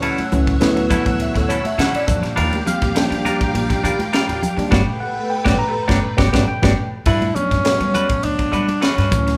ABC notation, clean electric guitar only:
X:1
M:4/4
L:1/16
Q:1/4=102
K:Glyd
V:1 name="Clean electric guitar"
[F,CEA] z4 z [F,CEA] z3 [F,CEA] z [F,CEA] [CEA] z2 | [G,D=F_B] z4 z [G,DFB] z3 [G,DFB] z [G,DFB] [DFB] z2 | [DFG] z4 [DFG] z2 [DFG] z [DFG] [DFG] z [DFG] z2 | [A,DFB] z4 z [A,DFB] z3 [A,DFB] z [A,DFB] [DFB] z2 |]